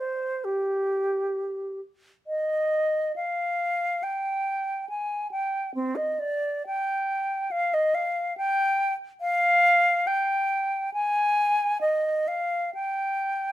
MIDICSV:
0, 0, Header, 1, 2, 480
1, 0, Start_track
1, 0, Tempo, 906344
1, 1196, Time_signature, 4, 2, 24, 8
1, 1672, Tempo, 867052
1, 3112, Tempo, 916031
1, 3592, Tempo, 852273
1, 5992, Tempo, 890208
1, 6472, Tempo, 944882
1, 7333, End_track
2, 0, Start_track
2, 0, Title_t, "Flute"
2, 0, Program_c, 0, 73
2, 0, Note_on_c, 0, 72, 57
2, 236, Note_on_c, 0, 67, 54
2, 243, Note_off_c, 0, 72, 0
2, 956, Note_off_c, 0, 67, 0
2, 1202, Note_on_c, 0, 75, 68
2, 1653, Note_off_c, 0, 75, 0
2, 1674, Note_on_c, 0, 77, 66
2, 2157, Note_on_c, 0, 79, 68
2, 2165, Note_off_c, 0, 77, 0
2, 2630, Note_off_c, 0, 79, 0
2, 2634, Note_on_c, 0, 80, 67
2, 2863, Note_off_c, 0, 80, 0
2, 2866, Note_on_c, 0, 79, 68
2, 3103, Note_off_c, 0, 79, 0
2, 3107, Note_on_c, 0, 60, 74
2, 3217, Note_on_c, 0, 75, 64
2, 3225, Note_off_c, 0, 60, 0
2, 3339, Note_on_c, 0, 74, 74
2, 3347, Note_off_c, 0, 75, 0
2, 3586, Note_off_c, 0, 74, 0
2, 3588, Note_on_c, 0, 79, 78
2, 4064, Note_on_c, 0, 77, 83
2, 4073, Note_off_c, 0, 79, 0
2, 4192, Note_on_c, 0, 75, 83
2, 4200, Note_off_c, 0, 77, 0
2, 4308, Note_on_c, 0, 77, 79
2, 4317, Note_off_c, 0, 75, 0
2, 4546, Note_off_c, 0, 77, 0
2, 4550, Note_on_c, 0, 79, 88
2, 4867, Note_off_c, 0, 79, 0
2, 5020, Note_on_c, 0, 77, 104
2, 5505, Note_on_c, 0, 79, 81
2, 5513, Note_off_c, 0, 77, 0
2, 5988, Note_off_c, 0, 79, 0
2, 5992, Note_on_c, 0, 80, 94
2, 6461, Note_off_c, 0, 80, 0
2, 6464, Note_on_c, 0, 75, 70
2, 6702, Note_on_c, 0, 77, 73
2, 6709, Note_off_c, 0, 75, 0
2, 6936, Note_off_c, 0, 77, 0
2, 6939, Note_on_c, 0, 79, 66
2, 7333, Note_off_c, 0, 79, 0
2, 7333, End_track
0, 0, End_of_file